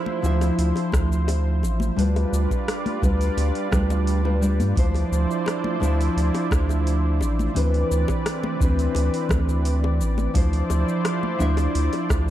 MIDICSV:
0, 0, Header, 1, 5, 480
1, 0, Start_track
1, 0, Tempo, 697674
1, 1364, Time_signature, 4, 2, 24, 8
1, 8463, End_track
2, 0, Start_track
2, 0, Title_t, "Analog synth pad"
2, 0, Program_c, 0, 89
2, 0, Note_on_c, 0, 53, 89
2, 0, Note_on_c, 0, 64, 77
2, 0, Note_on_c, 0, 72, 75
2, 0, Note_on_c, 0, 74, 87
2, 1335, Note_off_c, 0, 74, 0
2, 1345, Note_off_c, 0, 64, 0
2, 1346, Note_off_c, 0, 72, 0
2, 1347, Note_off_c, 0, 53, 0
2, 1360, Note_on_c, 0, 65, 74
2, 1362, Note_on_c, 0, 55, 86
2, 1362, Note_on_c, 0, 74, 94
2, 1363, Note_on_c, 0, 71, 77
2, 3263, Note_off_c, 0, 65, 0
2, 3264, Note_off_c, 0, 55, 0
2, 3264, Note_off_c, 0, 71, 0
2, 3264, Note_off_c, 0, 74, 0
2, 3281, Note_on_c, 0, 53, 91
2, 3282, Note_on_c, 0, 64, 76
2, 3282, Note_on_c, 0, 74, 93
2, 3284, Note_on_c, 0, 72, 79
2, 5183, Note_off_c, 0, 53, 0
2, 5184, Note_off_c, 0, 64, 0
2, 5184, Note_off_c, 0, 74, 0
2, 5185, Note_off_c, 0, 72, 0
2, 5205, Note_on_c, 0, 52, 80
2, 5208, Note_on_c, 0, 60, 79
2, 5208, Note_on_c, 0, 71, 83
2, 5208, Note_on_c, 0, 74, 92
2, 7106, Note_off_c, 0, 52, 0
2, 7107, Note_off_c, 0, 60, 0
2, 7107, Note_off_c, 0, 71, 0
2, 7124, Note_on_c, 0, 53, 84
2, 7124, Note_on_c, 0, 72, 81
2, 7125, Note_on_c, 0, 64, 76
2, 8463, Note_off_c, 0, 53, 0
2, 8463, Note_off_c, 0, 64, 0
2, 8463, Note_off_c, 0, 72, 0
2, 8463, Note_off_c, 0, 74, 0
2, 8463, End_track
3, 0, Start_track
3, 0, Title_t, "Nylon-string guitar"
3, 0, Program_c, 1, 24
3, 0, Note_on_c, 1, 53, 92
3, 0, Note_on_c, 1, 62, 79
3, 0, Note_on_c, 1, 64, 83
3, 0, Note_on_c, 1, 72, 98
3, 133, Note_off_c, 1, 53, 0
3, 137, Note_off_c, 1, 62, 0
3, 140, Note_off_c, 1, 64, 0
3, 143, Note_off_c, 1, 72, 0
3, 153, Note_on_c, 1, 53, 92
3, 162, Note_on_c, 1, 62, 83
3, 168, Note_on_c, 1, 64, 86
3, 177, Note_on_c, 1, 76, 105
3, 1331, Note_off_c, 1, 53, 0
3, 1335, Note_off_c, 1, 62, 0
3, 1338, Note_off_c, 1, 64, 0
3, 1343, Note_off_c, 1, 76, 0
3, 1351, Note_on_c, 1, 55, 72
3, 1356, Note_on_c, 1, 62, 66
3, 1364, Note_on_c, 1, 65, 67
3, 1371, Note_on_c, 1, 71, 81
3, 2049, Note_off_c, 1, 55, 0
3, 2052, Note_off_c, 1, 62, 0
3, 2056, Note_off_c, 1, 65, 0
3, 2059, Note_off_c, 1, 71, 0
3, 2076, Note_on_c, 1, 55, 69
3, 2079, Note_on_c, 1, 62, 70
3, 2085, Note_on_c, 1, 65, 63
3, 2089, Note_on_c, 1, 71, 78
3, 2537, Note_off_c, 1, 55, 0
3, 2539, Note_off_c, 1, 62, 0
3, 2540, Note_off_c, 1, 65, 0
3, 2543, Note_off_c, 1, 71, 0
3, 2553, Note_on_c, 1, 55, 80
3, 2560, Note_on_c, 1, 62, 75
3, 2562, Note_on_c, 1, 65, 77
3, 2567, Note_on_c, 1, 71, 88
3, 2892, Note_off_c, 1, 55, 0
3, 2895, Note_off_c, 1, 62, 0
3, 2897, Note_off_c, 1, 65, 0
3, 2898, Note_off_c, 1, 71, 0
3, 2921, Note_on_c, 1, 55, 70
3, 2924, Note_on_c, 1, 62, 68
3, 2926, Note_on_c, 1, 65, 67
3, 2930, Note_on_c, 1, 71, 76
3, 3013, Note_off_c, 1, 55, 0
3, 3014, Note_off_c, 1, 62, 0
3, 3016, Note_off_c, 1, 65, 0
3, 3018, Note_off_c, 1, 71, 0
3, 3035, Note_on_c, 1, 55, 74
3, 3040, Note_on_c, 1, 62, 68
3, 3044, Note_on_c, 1, 65, 67
3, 3047, Note_on_c, 1, 74, 80
3, 3252, Note_off_c, 1, 55, 0
3, 3254, Note_off_c, 1, 62, 0
3, 3256, Note_off_c, 1, 65, 0
3, 3257, Note_off_c, 1, 74, 0
3, 3271, Note_on_c, 1, 53, 84
3, 3277, Note_on_c, 1, 62, 77
3, 3286, Note_on_c, 1, 64, 80
3, 3294, Note_on_c, 1, 72, 98
3, 3969, Note_off_c, 1, 53, 0
3, 3972, Note_off_c, 1, 62, 0
3, 3977, Note_off_c, 1, 64, 0
3, 3981, Note_off_c, 1, 72, 0
3, 3989, Note_on_c, 1, 53, 94
3, 3995, Note_on_c, 1, 62, 84
3, 4001, Note_on_c, 1, 64, 87
3, 4012, Note_on_c, 1, 76, 97
3, 5168, Note_off_c, 1, 53, 0
3, 5171, Note_off_c, 1, 62, 0
3, 5175, Note_off_c, 1, 64, 0
3, 5180, Note_off_c, 1, 76, 0
3, 5188, Note_on_c, 1, 52, 67
3, 5194, Note_on_c, 1, 60, 66
3, 5202, Note_on_c, 1, 62, 68
3, 5210, Note_on_c, 1, 71, 80
3, 5888, Note_off_c, 1, 52, 0
3, 5891, Note_off_c, 1, 60, 0
3, 5895, Note_off_c, 1, 62, 0
3, 5899, Note_off_c, 1, 71, 0
3, 5913, Note_on_c, 1, 52, 80
3, 5920, Note_on_c, 1, 60, 65
3, 5930, Note_on_c, 1, 62, 68
3, 5934, Note_on_c, 1, 71, 84
3, 7091, Note_off_c, 1, 52, 0
3, 7094, Note_off_c, 1, 60, 0
3, 7099, Note_off_c, 1, 62, 0
3, 7101, Note_off_c, 1, 71, 0
3, 7113, Note_on_c, 1, 53, 94
3, 7119, Note_on_c, 1, 62, 77
3, 7126, Note_on_c, 1, 64, 78
3, 7133, Note_on_c, 1, 72, 102
3, 7810, Note_off_c, 1, 53, 0
3, 7813, Note_off_c, 1, 62, 0
3, 7817, Note_off_c, 1, 64, 0
3, 7821, Note_off_c, 1, 72, 0
3, 7834, Note_on_c, 1, 53, 91
3, 7842, Note_on_c, 1, 62, 85
3, 7846, Note_on_c, 1, 64, 81
3, 7856, Note_on_c, 1, 76, 105
3, 8463, Note_off_c, 1, 53, 0
3, 8463, Note_off_c, 1, 62, 0
3, 8463, Note_off_c, 1, 64, 0
3, 8463, Note_off_c, 1, 76, 0
3, 8463, End_track
4, 0, Start_track
4, 0, Title_t, "Analog synth bass"
4, 0, Program_c, 2, 38
4, 162, Note_on_c, 2, 38, 100
4, 350, Note_off_c, 2, 38, 0
4, 401, Note_on_c, 2, 38, 80
4, 498, Note_off_c, 2, 38, 0
4, 642, Note_on_c, 2, 38, 92
4, 1119, Note_on_c, 2, 33, 84
4, 1129, Note_off_c, 2, 38, 0
4, 1309, Note_off_c, 2, 33, 0
4, 1360, Note_on_c, 2, 38, 96
4, 1549, Note_off_c, 2, 38, 0
4, 1599, Note_on_c, 2, 38, 93
4, 1697, Note_off_c, 2, 38, 0
4, 2081, Note_on_c, 2, 38, 101
4, 2270, Note_off_c, 2, 38, 0
4, 2319, Note_on_c, 2, 38, 90
4, 2417, Note_off_c, 2, 38, 0
4, 2562, Note_on_c, 2, 38, 92
4, 3166, Note_on_c, 2, 43, 99
4, 3176, Note_off_c, 2, 38, 0
4, 3257, Note_off_c, 2, 43, 0
4, 3282, Note_on_c, 2, 38, 90
4, 3471, Note_off_c, 2, 38, 0
4, 3522, Note_on_c, 2, 38, 92
4, 3618, Note_off_c, 2, 38, 0
4, 4003, Note_on_c, 2, 38, 97
4, 4191, Note_off_c, 2, 38, 0
4, 4243, Note_on_c, 2, 38, 86
4, 4339, Note_off_c, 2, 38, 0
4, 4483, Note_on_c, 2, 38, 95
4, 4964, Note_on_c, 2, 33, 81
4, 4974, Note_off_c, 2, 38, 0
4, 5152, Note_off_c, 2, 33, 0
4, 5204, Note_on_c, 2, 38, 97
4, 5391, Note_off_c, 2, 38, 0
4, 5443, Note_on_c, 2, 38, 90
4, 5539, Note_off_c, 2, 38, 0
4, 5922, Note_on_c, 2, 38, 101
4, 6111, Note_off_c, 2, 38, 0
4, 6160, Note_on_c, 2, 38, 92
4, 6258, Note_off_c, 2, 38, 0
4, 6403, Note_on_c, 2, 38, 94
4, 6883, Note_on_c, 2, 33, 89
4, 6894, Note_off_c, 2, 38, 0
4, 7071, Note_off_c, 2, 33, 0
4, 7123, Note_on_c, 2, 38, 97
4, 7311, Note_off_c, 2, 38, 0
4, 7363, Note_on_c, 2, 38, 89
4, 7459, Note_off_c, 2, 38, 0
4, 7845, Note_on_c, 2, 38, 106
4, 8032, Note_off_c, 2, 38, 0
4, 8084, Note_on_c, 2, 38, 87
4, 8179, Note_off_c, 2, 38, 0
4, 8323, Note_on_c, 2, 38, 96
4, 8463, Note_off_c, 2, 38, 0
4, 8463, End_track
5, 0, Start_track
5, 0, Title_t, "Drums"
5, 43, Note_on_c, 9, 63, 82
5, 112, Note_off_c, 9, 63, 0
5, 166, Note_on_c, 9, 69, 74
5, 234, Note_off_c, 9, 69, 0
5, 284, Note_on_c, 9, 60, 72
5, 285, Note_on_c, 9, 46, 38
5, 289, Note_on_c, 9, 69, 44
5, 353, Note_off_c, 9, 60, 0
5, 354, Note_off_c, 9, 46, 0
5, 357, Note_off_c, 9, 69, 0
5, 404, Note_on_c, 9, 46, 67
5, 407, Note_on_c, 9, 69, 34
5, 472, Note_off_c, 9, 46, 0
5, 476, Note_off_c, 9, 69, 0
5, 520, Note_on_c, 9, 60, 54
5, 528, Note_on_c, 9, 46, 42
5, 589, Note_off_c, 9, 60, 0
5, 596, Note_off_c, 9, 46, 0
5, 635, Note_on_c, 9, 63, 66
5, 642, Note_on_c, 9, 36, 96
5, 642, Note_on_c, 9, 64, 70
5, 643, Note_on_c, 9, 37, 75
5, 647, Note_on_c, 9, 69, 78
5, 704, Note_off_c, 9, 63, 0
5, 711, Note_off_c, 9, 36, 0
5, 711, Note_off_c, 9, 64, 0
5, 712, Note_off_c, 9, 37, 0
5, 716, Note_off_c, 9, 69, 0
5, 772, Note_on_c, 9, 69, 47
5, 841, Note_off_c, 9, 69, 0
5, 880, Note_on_c, 9, 60, 75
5, 885, Note_on_c, 9, 46, 64
5, 889, Note_on_c, 9, 69, 34
5, 949, Note_off_c, 9, 60, 0
5, 954, Note_off_c, 9, 46, 0
5, 958, Note_off_c, 9, 69, 0
5, 1122, Note_on_c, 9, 60, 46
5, 1130, Note_on_c, 9, 69, 78
5, 1191, Note_off_c, 9, 60, 0
5, 1199, Note_off_c, 9, 69, 0
5, 1237, Note_on_c, 9, 63, 97
5, 1252, Note_on_c, 9, 69, 46
5, 1306, Note_off_c, 9, 63, 0
5, 1321, Note_off_c, 9, 69, 0
5, 1367, Note_on_c, 9, 46, 65
5, 1371, Note_on_c, 9, 69, 32
5, 1436, Note_off_c, 9, 46, 0
5, 1439, Note_off_c, 9, 69, 0
5, 1488, Note_on_c, 9, 60, 64
5, 1489, Note_on_c, 9, 46, 29
5, 1556, Note_off_c, 9, 60, 0
5, 1558, Note_off_c, 9, 46, 0
5, 1607, Note_on_c, 9, 69, 84
5, 1675, Note_off_c, 9, 69, 0
5, 1724, Note_on_c, 9, 36, 61
5, 1729, Note_on_c, 9, 60, 46
5, 1730, Note_on_c, 9, 69, 43
5, 1792, Note_off_c, 9, 36, 0
5, 1797, Note_off_c, 9, 60, 0
5, 1799, Note_off_c, 9, 69, 0
5, 1846, Note_on_c, 9, 37, 75
5, 1846, Note_on_c, 9, 46, 58
5, 1849, Note_on_c, 9, 69, 33
5, 1914, Note_off_c, 9, 37, 0
5, 1914, Note_off_c, 9, 46, 0
5, 1918, Note_off_c, 9, 69, 0
5, 1967, Note_on_c, 9, 63, 89
5, 1969, Note_on_c, 9, 46, 28
5, 2035, Note_off_c, 9, 63, 0
5, 2037, Note_off_c, 9, 46, 0
5, 2081, Note_on_c, 9, 36, 97
5, 2087, Note_on_c, 9, 60, 61
5, 2088, Note_on_c, 9, 69, 75
5, 2150, Note_off_c, 9, 36, 0
5, 2156, Note_off_c, 9, 60, 0
5, 2157, Note_off_c, 9, 69, 0
5, 2207, Note_on_c, 9, 46, 41
5, 2211, Note_on_c, 9, 69, 43
5, 2276, Note_off_c, 9, 46, 0
5, 2280, Note_off_c, 9, 69, 0
5, 2322, Note_on_c, 9, 60, 50
5, 2324, Note_on_c, 9, 46, 60
5, 2327, Note_on_c, 9, 69, 34
5, 2390, Note_off_c, 9, 60, 0
5, 2393, Note_off_c, 9, 46, 0
5, 2396, Note_off_c, 9, 69, 0
5, 2444, Note_on_c, 9, 46, 41
5, 2513, Note_off_c, 9, 46, 0
5, 2559, Note_on_c, 9, 64, 68
5, 2561, Note_on_c, 9, 36, 99
5, 2562, Note_on_c, 9, 37, 77
5, 2565, Note_on_c, 9, 63, 56
5, 2566, Note_on_c, 9, 69, 80
5, 2628, Note_off_c, 9, 64, 0
5, 2630, Note_off_c, 9, 36, 0
5, 2631, Note_off_c, 9, 37, 0
5, 2634, Note_off_c, 9, 63, 0
5, 2635, Note_off_c, 9, 69, 0
5, 2685, Note_on_c, 9, 60, 68
5, 2688, Note_on_c, 9, 69, 45
5, 2754, Note_off_c, 9, 60, 0
5, 2757, Note_off_c, 9, 69, 0
5, 2802, Note_on_c, 9, 46, 60
5, 2806, Note_on_c, 9, 69, 35
5, 2871, Note_off_c, 9, 46, 0
5, 2875, Note_off_c, 9, 69, 0
5, 2924, Note_on_c, 9, 60, 51
5, 2993, Note_off_c, 9, 60, 0
5, 3045, Note_on_c, 9, 69, 78
5, 3113, Note_off_c, 9, 69, 0
5, 3163, Note_on_c, 9, 63, 91
5, 3165, Note_on_c, 9, 46, 26
5, 3168, Note_on_c, 9, 69, 42
5, 3232, Note_off_c, 9, 63, 0
5, 3233, Note_off_c, 9, 46, 0
5, 3237, Note_off_c, 9, 69, 0
5, 3282, Note_on_c, 9, 36, 117
5, 3284, Note_on_c, 9, 46, 64
5, 3288, Note_on_c, 9, 69, 31
5, 3351, Note_off_c, 9, 36, 0
5, 3353, Note_off_c, 9, 46, 0
5, 3357, Note_off_c, 9, 69, 0
5, 3402, Note_on_c, 9, 60, 42
5, 3409, Note_on_c, 9, 46, 31
5, 3471, Note_off_c, 9, 60, 0
5, 3477, Note_off_c, 9, 46, 0
5, 3528, Note_on_c, 9, 69, 80
5, 3597, Note_off_c, 9, 69, 0
5, 3652, Note_on_c, 9, 69, 41
5, 3721, Note_off_c, 9, 69, 0
5, 3758, Note_on_c, 9, 60, 70
5, 3768, Note_on_c, 9, 37, 73
5, 3768, Note_on_c, 9, 46, 59
5, 3772, Note_on_c, 9, 69, 33
5, 3826, Note_off_c, 9, 60, 0
5, 3837, Note_off_c, 9, 37, 0
5, 3837, Note_off_c, 9, 46, 0
5, 3840, Note_off_c, 9, 69, 0
5, 3882, Note_on_c, 9, 63, 85
5, 3951, Note_off_c, 9, 63, 0
5, 4001, Note_on_c, 9, 60, 45
5, 4011, Note_on_c, 9, 69, 73
5, 4070, Note_off_c, 9, 60, 0
5, 4079, Note_off_c, 9, 69, 0
5, 4132, Note_on_c, 9, 46, 40
5, 4136, Note_on_c, 9, 69, 41
5, 4201, Note_off_c, 9, 46, 0
5, 4205, Note_off_c, 9, 69, 0
5, 4249, Note_on_c, 9, 46, 62
5, 4253, Note_on_c, 9, 69, 31
5, 4318, Note_off_c, 9, 46, 0
5, 4322, Note_off_c, 9, 69, 0
5, 4365, Note_on_c, 9, 60, 82
5, 4370, Note_on_c, 9, 46, 42
5, 4434, Note_off_c, 9, 60, 0
5, 4438, Note_off_c, 9, 46, 0
5, 4478, Note_on_c, 9, 64, 65
5, 4479, Note_on_c, 9, 63, 66
5, 4483, Note_on_c, 9, 36, 96
5, 4486, Note_on_c, 9, 37, 74
5, 4489, Note_on_c, 9, 69, 76
5, 4546, Note_off_c, 9, 64, 0
5, 4548, Note_off_c, 9, 63, 0
5, 4552, Note_off_c, 9, 36, 0
5, 4555, Note_off_c, 9, 37, 0
5, 4558, Note_off_c, 9, 69, 0
5, 4605, Note_on_c, 9, 60, 43
5, 4612, Note_on_c, 9, 69, 44
5, 4674, Note_off_c, 9, 60, 0
5, 4681, Note_off_c, 9, 69, 0
5, 4726, Note_on_c, 9, 46, 63
5, 4730, Note_on_c, 9, 69, 34
5, 4795, Note_off_c, 9, 46, 0
5, 4799, Note_off_c, 9, 69, 0
5, 4958, Note_on_c, 9, 60, 70
5, 4970, Note_on_c, 9, 69, 77
5, 5027, Note_off_c, 9, 60, 0
5, 5039, Note_off_c, 9, 69, 0
5, 5086, Note_on_c, 9, 63, 90
5, 5091, Note_on_c, 9, 69, 42
5, 5155, Note_off_c, 9, 63, 0
5, 5160, Note_off_c, 9, 69, 0
5, 5202, Note_on_c, 9, 46, 64
5, 5203, Note_on_c, 9, 60, 48
5, 5206, Note_on_c, 9, 69, 30
5, 5271, Note_off_c, 9, 46, 0
5, 5272, Note_off_c, 9, 60, 0
5, 5275, Note_off_c, 9, 69, 0
5, 5326, Note_on_c, 9, 46, 30
5, 5395, Note_off_c, 9, 46, 0
5, 5446, Note_on_c, 9, 69, 78
5, 5515, Note_off_c, 9, 69, 0
5, 5560, Note_on_c, 9, 60, 82
5, 5565, Note_on_c, 9, 36, 56
5, 5569, Note_on_c, 9, 69, 42
5, 5629, Note_off_c, 9, 60, 0
5, 5634, Note_off_c, 9, 36, 0
5, 5637, Note_off_c, 9, 69, 0
5, 5682, Note_on_c, 9, 37, 70
5, 5682, Note_on_c, 9, 46, 63
5, 5686, Note_on_c, 9, 69, 32
5, 5751, Note_off_c, 9, 37, 0
5, 5751, Note_off_c, 9, 46, 0
5, 5755, Note_off_c, 9, 69, 0
5, 5803, Note_on_c, 9, 63, 86
5, 5805, Note_on_c, 9, 60, 48
5, 5872, Note_off_c, 9, 63, 0
5, 5874, Note_off_c, 9, 60, 0
5, 5923, Note_on_c, 9, 36, 98
5, 5927, Note_on_c, 9, 69, 73
5, 5991, Note_off_c, 9, 36, 0
5, 5996, Note_off_c, 9, 69, 0
5, 6047, Note_on_c, 9, 46, 41
5, 6050, Note_on_c, 9, 69, 40
5, 6115, Note_off_c, 9, 46, 0
5, 6119, Note_off_c, 9, 69, 0
5, 6156, Note_on_c, 9, 60, 66
5, 6164, Note_on_c, 9, 46, 67
5, 6168, Note_on_c, 9, 69, 32
5, 6224, Note_off_c, 9, 60, 0
5, 6233, Note_off_c, 9, 46, 0
5, 6237, Note_off_c, 9, 69, 0
5, 6287, Note_on_c, 9, 46, 42
5, 6356, Note_off_c, 9, 46, 0
5, 6392, Note_on_c, 9, 64, 69
5, 6394, Note_on_c, 9, 63, 60
5, 6402, Note_on_c, 9, 36, 91
5, 6402, Note_on_c, 9, 37, 74
5, 6403, Note_on_c, 9, 60, 47
5, 6406, Note_on_c, 9, 69, 71
5, 6460, Note_off_c, 9, 64, 0
5, 6462, Note_off_c, 9, 63, 0
5, 6471, Note_off_c, 9, 36, 0
5, 6471, Note_off_c, 9, 37, 0
5, 6472, Note_off_c, 9, 60, 0
5, 6474, Note_off_c, 9, 69, 0
5, 6529, Note_on_c, 9, 69, 43
5, 6597, Note_off_c, 9, 69, 0
5, 6641, Note_on_c, 9, 46, 70
5, 6645, Note_on_c, 9, 69, 32
5, 6710, Note_off_c, 9, 46, 0
5, 6713, Note_off_c, 9, 69, 0
5, 6770, Note_on_c, 9, 60, 69
5, 6839, Note_off_c, 9, 60, 0
5, 6886, Note_on_c, 9, 69, 76
5, 6955, Note_off_c, 9, 69, 0
5, 7002, Note_on_c, 9, 63, 87
5, 7003, Note_on_c, 9, 60, 53
5, 7009, Note_on_c, 9, 69, 37
5, 7071, Note_off_c, 9, 60, 0
5, 7071, Note_off_c, 9, 63, 0
5, 7077, Note_off_c, 9, 69, 0
5, 7121, Note_on_c, 9, 46, 67
5, 7123, Note_on_c, 9, 36, 112
5, 7125, Note_on_c, 9, 69, 32
5, 7190, Note_off_c, 9, 46, 0
5, 7192, Note_off_c, 9, 36, 0
5, 7194, Note_off_c, 9, 69, 0
5, 7246, Note_on_c, 9, 46, 32
5, 7314, Note_off_c, 9, 46, 0
5, 7361, Note_on_c, 9, 60, 69
5, 7364, Note_on_c, 9, 69, 76
5, 7430, Note_off_c, 9, 60, 0
5, 7433, Note_off_c, 9, 69, 0
5, 7489, Note_on_c, 9, 69, 40
5, 7558, Note_off_c, 9, 69, 0
5, 7602, Note_on_c, 9, 37, 77
5, 7602, Note_on_c, 9, 46, 69
5, 7605, Note_on_c, 9, 69, 32
5, 7608, Note_on_c, 9, 60, 45
5, 7671, Note_off_c, 9, 37, 0
5, 7671, Note_off_c, 9, 46, 0
5, 7674, Note_off_c, 9, 69, 0
5, 7677, Note_off_c, 9, 60, 0
5, 7727, Note_on_c, 9, 63, 80
5, 7796, Note_off_c, 9, 63, 0
5, 7845, Note_on_c, 9, 69, 72
5, 7914, Note_off_c, 9, 69, 0
5, 7961, Note_on_c, 9, 60, 79
5, 7966, Note_on_c, 9, 46, 43
5, 7969, Note_on_c, 9, 69, 40
5, 8030, Note_off_c, 9, 60, 0
5, 8035, Note_off_c, 9, 46, 0
5, 8038, Note_off_c, 9, 69, 0
5, 8085, Note_on_c, 9, 46, 67
5, 8089, Note_on_c, 9, 69, 30
5, 8154, Note_off_c, 9, 46, 0
5, 8158, Note_off_c, 9, 69, 0
5, 8206, Note_on_c, 9, 46, 43
5, 8210, Note_on_c, 9, 60, 58
5, 8274, Note_off_c, 9, 46, 0
5, 8279, Note_off_c, 9, 60, 0
5, 8320, Note_on_c, 9, 63, 50
5, 8322, Note_on_c, 9, 64, 73
5, 8325, Note_on_c, 9, 36, 98
5, 8326, Note_on_c, 9, 37, 76
5, 8330, Note_on_c, 9, 69, 74
5, 8389, Note_off_c, 9, 63, 0
5, 8391, Note_off_c, 9, 64, 0
5, 8394, Note_off_c, 9, 36, 0
5, 8395, Note_off_c, 9, 37, 0
5, 8399, Note_off_c, 9, 69, 0
5, 8463, End_track
0, 0, End_of_file